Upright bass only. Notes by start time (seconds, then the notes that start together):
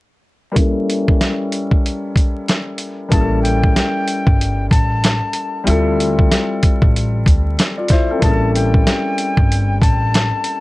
3.12 A1
4.27 G1
4.71 A1
5.67 D2
6.82 A1
7.26 D2
8.22 A1
9.37 G1
9.82 A1